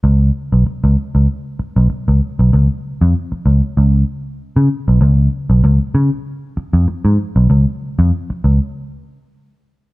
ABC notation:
X:1
M:4/4
L:1/16
Q:"Swing 16ths" 1/4=96
K:Dbmix
V:1 name="Picked electric bass" clef=bass
D,,2 z C,, z D,, z D,, z3 C,, z D,, z C,, | D,, z2 F,, z2 D,, z D,,2 z3 D, z C,, | D,,2 z C,, D,, z D, z4 F,, z A,, z C,, | D,, z2 F,, z2 D,, z8 z |]